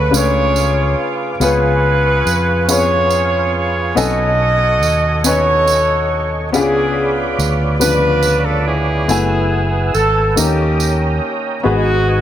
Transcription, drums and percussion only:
0.14 tambourine medium
0.56 tambourine medium
1.41 tambourine medium
2.27 tambourine medium
2.69 tambourine medium
3.11 tambourine medium
3.97 tambourine medium
4.83 tambourine soft
5.24 tambourine medium
5.67 tambourine medium
6.54 tambourine medium
7.39 tambourine medium
7.81 tambourine medium
8.22 tambourine medium
9.09 tambourine medium
9.95 tambourine soft
10.37 tambourine medium
10.80 tambourine medium

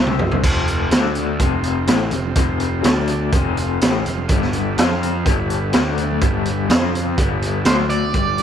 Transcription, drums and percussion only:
0.07 high tom medium
0.07 high conga medium
0.19 mid tom medium
0.19 low conga medium
0.32 floor tom medium
0.32 high conga medium
0.44 kick loud
0.44 closed hi-hat medium
0.44 crash loud
0.68 closed hi-hat medium
0.91 snare loud
0.91 closed hi-hat medium
1.05 high conga medium
1.15 closed hi-hat medium
1.15 low conga medium
1.39 kick medium
1.39 closed hi-hat loud
1.63 closed hi-hat medium
1.87 snare loud
1.87 closed hi-hat loud
2.11 closed hi-hat medium
2.11 low conga medium
2.26 high conga medium
2.35 kick loud
2.35 closed hi-hat loud
2.60 closed hi-hat medium
2.84 snare loud
2.84 closed hi-hat loud
2.98 high conga medium
3.07 closed hi-hat medium
3.07 low conga medium
3.32 kick loud
3.32 closed hi-hat medium
3.57 closed hi-hat medium
3.81 snare loud
3.81 closed hi-hat loud
4.06 closed hi-hat medium
4.06 low conga medium
4.18 high conga medium
4.29 kick loud
4.29 closed hi-hat medium
4.42 snare soft
4.53 closed hi-hat medium
4.78 snare loud
4.78 closed hi-hat medium
4.90 high conga medium
5.02 closed hi-hat medium
5.02 low conga medium
5.26 kick loud
5.26 closed hi-hat medium
5.50 closed hi-hat medium
5.73 snare loud
5.73 closed hi-hat medium
5.98 closed hi-hat medium
5.98 low conga medium
6.11 high conga medium
6.21 kick loud
6.21 closed hi-hat medium
6.45 closed hi-hat medium
6.70 snare loud
6.70 closed hi-hat loud
6.82 high conga medium
6.94 closed hi-hat medium
6.94 low conga medium
7.06 low conga medium
7.18 kick medium
7.18 closed hi-hat medium
7.42 closed hi-hat medium
7.65 snare loud
7.65 closed hi-hat loud
7.65 high conga medium
7.78 high conga medium
7.90 closed hi-hat medium
7.90 low conga medium
8.03 low conga medium
8.14 kick loud
8.14 closed hi-hat medium
8.38 closed hi-hat medium

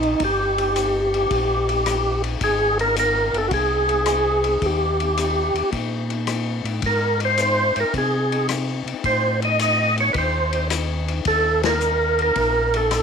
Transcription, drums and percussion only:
0.03 ride soft
0.20 kick soft
0.20 ride medium
0.58 ride soft
0.76 hi-hat pedal medium
0.76 ride medium
1.14 ride soft
1.31 kick soft
1.31 ride medium
1.69 ride soft
1.86 cross-stick medium
1.86 hi-hat pedal medium
1.86 ride medium
2.24 ride soft
2.41 kick soft
2.41 ride medium
2.79 ride soft
2.96 hi-hat pedal medium
2.96 ride medium
3.34 ride soft
3.51 kick soft
3.51 ride medium
3.89 ride soft
4.06 cross-stick medium
4.06 hi-hat pedal medium
4.06 ride medium
4.44 ride soft
4.62 kick soft
4.62 ride medium
5.00 ride soft
5.17 hi-hat pedal medium
5.17 ride medium
5.55 ride soft
5.72 kick soft
5.72 ride medium
6.10 ride soft
6.27 cross-stick medium
6.27 hi-hat pedal soft
6.27 ride medium
6.65 ride soft
6.82 kick soft
6.82 ride medium
7.20 ride soft
7.38 hi-hat pedal medium
7.38 ride medium
7.76 ride soft
7.94 kick soft
7.94 ride medium
8.32 ride soft
8.49 cross-stick medium
8.49 hi-hat pedal medium
8.49 ride medium
8.87 ride soft
9.04 kick soft
9.04 ride medium
9.42 ride soft
9.59 hi-hat pedal soft
9.59 ride medium
9.97 ride soft
10.14 kick soft
10.14 ride medium
10.53 ride soft
10.70 cross-stick medium
10.70 hi-hat pedal medium
10.70 ride medium
11.08 ride soft
11.25 kick soft
11.25 ride medium
11.63 snare medium
11.63 ride medium
11.80 hi-hat pedal medium
12.19 ride soft
12.35 kick soft
12.35 ride medium
12.74 ride soft
12.91 cross-stick medium
12.91 hi-hat pedal soft
12.91 ride medium

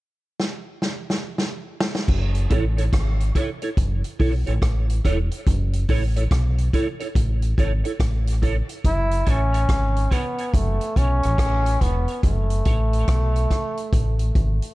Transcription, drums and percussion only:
0.40 snare medium
0.82 snare medium
1.10 snare medium
1.38 snare medium
1.80 snare loud
1.95 snare medium
2.08 kick loud
2.08 crash medium
2.35 closed hi-hat medium
2.50 kick loud
2.50 closed hi-hat medium
2.50 high bongo medium
2.78 closed hi-hat soft
2.93 kick loud
2.93 cross-stick loud
2.93 closed hi-hat medium
3.20 closed hi-hat medium
3.35 kick medium
3.35 closed hi-hat medium
3.62 closed hi-hat soft
3.77 kick loud
3.77 closed hi-hat loud
4.04 closed hi-hat soft
4.20 kick medium
4.20 open hi-hat soft
4.47 closed hi-hat medium
4.62 kick loud
4.62 cross-stick loud
4.62 closed hi-hat medium
4.90 closed hi-hat medium
5.05 kick medium
5.05 closed hi-hat medium
5.31 closed hi-hat medium
5.47 kick loud
5.47 closed hi-hat medium
5.73 closed hi-hat medium
5.88 kick medium
5.88 open hi-hat medium
6.16 closed hi-hat soft
6.31 kick loud
6.31 cross-stick loud
6.31 closed hi-hat medium
6.58 closed hi-hat soft
6.73 kick medium
6.73 closed hi-hat medium
7.00 closed hi-hat soft
7.15 kick loud
7.15 closed hi-hat loud
7.42 closed hi-hat soft
7.58 kick medium
7.58 closed hi-hat medium
7.85 closed hi-hat medium
8.00 kick loud
8.00 cross-stick loud
8.00 closed hi-hat medium
8.27 closed hi-hat medium
8.43 kick medium
8.43 closed hi-hat medium
8.69 closed hi-hat medium
8.84 kick loud
8.84 closed hi-hat medium
9.11 closed hi-hat medium
9.26 kick medium
9.26 closed hi-hat medium
9.54 closed hi-hat soft
9.69 kick loud
9.69 cross-stick loud
9.69 closed hi-hat medium
9.96 closed hi-hat medium
10.11 kick medium
10.11 closed hi-hat medium
10.38 closed hi-hat soft
10.54 kick loud
10.54 closed hi-hat loud
10.81 closed hi-hat medium
10.96 kick medium
10.96 closed hi-hat medium
11.23 closed hi-hat medium
11.38 kick loud
11.38 cross-stick loud
11.38 closed hi-hat medium
11.66 closed hi-hat medium
11.81 kick medium
11.81 closed hi-hat medium
12.08 closed hi-hat soft
12.23 kick loud
12.23 closed hi-hat medium
12.50 closed hi-hat medium
12.65 kick loud
12.65 closed hi-hat medium
12.93 closed hi-hat soft
13.08 kick loud
13.08 cross-stick loud
13.08 closed hi-hat medium
13.36 closed hi-hat soft
13.51 kick medium
13.51 cross-stick medium
13.51 closed hi-hat medium
13.77 closed hi-hat soft
13.93 kick loud
13.93 closed hi-hat medium
14.19 closed hi-hat soft
14.35 kick loud
14.35 closed hi-hat medium
14.62 closed hi-hat soft

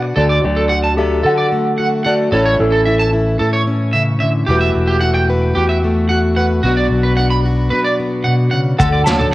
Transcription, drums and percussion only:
8.80 kick medium
8.80 maracas medium
9.06 snare medium
9.06 high conga medium
9.06 low agogo medium
9.06 maracas loud
9.20 low conga medium

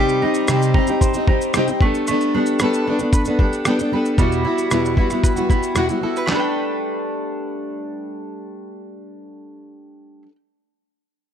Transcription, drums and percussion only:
0.09 shaker soft
0.34 shaker soft
0.48 cross-stick medium
0.48 shaker medium
0.62 shaker soft
0.74 kick medium
0.87 shaker soft
1.01 kick medium
1.01 shaker medium
1.14 shaker soft
1.27 kick medium
1.41 shaker soft
1.54 cross-stick loud
1.54 shaker medium
1.68 shaker soft
1.81 kick medium
1.94 shaker soft
2.07 shaker medium
2.21 shaker soft
2.46 shaker soft
2.59 cross-stick medium
2.59 shaker medium
2.74 shaker soft
2.99 shaker soft
3.13 kick medium
3.13 shaker medium
3.25 shaker soft
3.39 kick medium
3.53 shaker soft
3.65 cross-stick medium
3.65 shaker medium
3.79 shaker soft
4.05 shaker soft
4.18 kick loud
4.18 shaker medium
4.32 shaker soft
4.58 shaker soft
4.71 cross-stick medium
4.71 shaker medium
4.85 shaker soft
4.97 kick medium
5.10 cross-stick soft
5.10 shaker soft
5.24 kick medium
5.24 shaker medium
5.37 shaker soft
5.50 kick medium
5.50 shaker soft
5.63 shaker soft
5.75 cross-stick medium
5.75 shaker medium
5.89 shaker soft
6.16 shaker soft
6.28 snare medium
6.28 clap medium

